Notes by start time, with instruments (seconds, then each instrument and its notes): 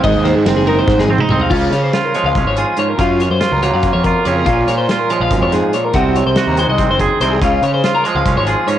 0.03 picked electric bass G#1, clean electric guitar G#2 D#5, kick, ride
0.15 picked electric bass D#2
0.24 clean electric guitar D#3 C5, snare, ride
0.35 picked electric bass G#2, clean electric guitar G#4
0.46 picked electric bass F#1, clean electric guitar C4, snare, ride
0.57 clean electric guitar G#4
0.67 clean electric guitar D#4 A#4, ride
0.79 clean electric guitar C5
0.88 picked electric bass G#2, clean electric guitar G#2, kick, snare
0.98 picked electric bass G#1, clean electric guitar G#4, snare
1.09 clean electric guitar C4 C5, high tom
1.18 clean electric guitar D#4, mid tom
1.29 picked electric bass C2, clean electric guitar C4 D#5, mid tom
1.40 clean electric guitar F5, floor tom
1.50 picked electric bass C#2, clean electric guitar C#3 C#4 F4, kick, crash
1.70 picked electric bass C#3, clean electric guitar C#5, snare, closed hi-hat
1.84 clean electric guitar C5
1.93 clean electric guitar F4, snare, closed hi-hat
2.05 clean electric guitar A#4
2.14 clean electric guitar F3 G#3 C#5, closed hi-hat
2.24 picked electric bass C#2, clean electric guitar F5
2.35 picked electric bass C2, clean electric guitar C#4, kick, closed hi-hat
2.45 picked electric bass G#1, clean electric guitar C#5
2.57 clean electric guitar F4 G#4, closed hi-hat
2.77 clean electric guitar G#2 C#4 C#5, closed hi-hat
2.89 clean electric guitar A#4
2.98 clean electric guitar F#2 C#4 F4, picked electric bass F#2, kick, closed hi-hat
3.20 clean electric guitar C#5, closed hi-hat
3.30 picked electric bass F#2, clean electric guitar C5
3.41 clean electric guitar F4, snare, closed hi-hat
3.51 picked electric bass C#2, clean electric guitar A#4
3.63 clean electric guitar F#3 A#3 C#5, snare, closed hi-hat
3.73 picked electric bass F#2, clean electric guitar F5
3.83 clean electric guitar C#4, kick, closed hi-hat
3.93 picked electric bass F2, clean electric guitar C#5
4.04 clean electric guitar F4 A#4, kick, closed hi-hat
4.25 picked electric bass F2, clean electric guitar C#3 C#4 C#5, closed hi-hat
4.36 clean electric guitar A#4
4.46 picked electric bass A#1, clean electric guitar A#2 C#4 F4, kick, closed hi-hat
4.67 picked electric bass A#2, clean electric guitar C#5, snare, closed hi-hat
4.78 clean electric guitar C5
4.89 clean electric guitar F4, snare, closed hi-hat
4.99 clean electric guitar A#4
5.10 clean electric guitar F3 G#3 C#5, closed hi-hat
5.20 picked electric bass A#1, clean electric guitar F5
5.30 picked electric bass G#1, clean electric guitar F#2, kick, closed hi-hat
5.41 picked electric bass F2, clean electric guitar C#5
5.52 clean electric guitar G#2 G#4, snare, closed hi-hat
5.73 clean electric guitar A#2 C#5, closed hi-hat
5.85 clean electric guitar A#4
5.93 picked electric bass C2, clean electric guitar C3 C4 F#4, kick, closed hi-hat
6.16 clean electric guitar C#5, closed hi-hat
6.26 picked electric bass C2, clean electric guitar C5
6.36 clean electric guitar F#4, snare, closed hi-hat
6.47 picked electric bass D#2, clean electric guitar A#4
6.57 clean electric guitar D#3 G#3 C5, closed hi-hat
6.68 picked electric bass C2, clean electric guitar D#5
6.78 clean electric guitar C4, kick, snare, closed hi-hat
6.89 picked electric bass F#1, clean electric guitar C5
7.00 clean electric guitar G#4, kick, closed hi-hat
7.20 picked electric bass C2, clean electric guitar C3 C4 C5, snare, closed hi-hat
7.32 clean electric guitar G#4
7.41 picked electric bass C#2, clean electric guitar C#3 C#4 F4, kick, closed hi-hat
7.62 picked electric bass C#3, clean electric guitar C#5, closed hi-hat
7.74 clean electric guitar C5
7.84 clean electric guitar F4, snare, closed hi-hat
7.95 clean electric guitar A#4
8.04 clean electric guitar F3 G#3 C#5, closed hi-hat
8.15 picked electric bass C#2, clean electric guitar F5
8.26 picked electric bass C2, clean electric guitar C#4, kick, snare, closed hi-hat
8.36 picked electric bass G#1, clean electric guitar C#5
8.47 clean electric guitar F4 G#4, closed hi-hat
8.67 clean electric guitar G#2 C#4 C#5, closed hi-hat